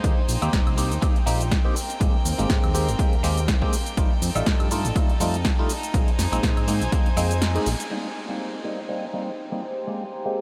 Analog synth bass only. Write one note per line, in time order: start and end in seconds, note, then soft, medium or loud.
0.04 0.13 D#2 loud
0.29 0.38 A#1 medium
0.42 0.49 D#2 medium
0.53 0.62 D#1 loud
0.67 0.93 C2 medium
0.91 0.99 D#2 medium
1.27 1.58 A#1 medium
2.01 2.10 G#1 loud
2.25 2.34 D#2 medium
2.39 2.46 G#1 medium
2.50 2.59 G#2 loud
2.64 2.90 D#2 medium
2.88 2.95 G#1 medium
3.13 3.22 D#2 soft
3.24 3.54 D#2 medium
3.97 4.06 A1 loud
4.22 4.31 F2 medium
4.36 4.43 A1 loud
4.46 4.55 A2 loud
4.60 4.86 G2 medium
4.85 4.92 A1 medium
5.20 5.51 F2 medium
5.94 6.03 A#1 loud
6.19 6.28 F2 medium
6.32 6.39 A#1 loud
6.43 6.52 A#2 loud
6.57 6.83 G#2 medium
6.81 6.89 A#1 medium
7.06 7.15 F2 soft
7.17 7.41 F2 medium
7.41 7.59 F2 medium
7.66 7.75 A#1 medium